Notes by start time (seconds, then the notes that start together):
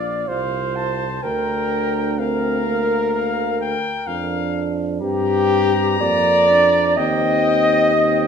Already playing: A#1 F4 D5 F5
0.28 C2 F4 C5 F5
0.76 A5
1.23 D2 D4 A#4 G5
2.18 C4 A#4 F5
2.66 A#3
3.13 F5
3.61 G5
4.07 F2 D4 F5
5.00 G2 C4 G4 A#5
6.01 F2 A#3 D5
6.49 D4
6.96 D#2 C4 D#5 G5
7.94 C4 G5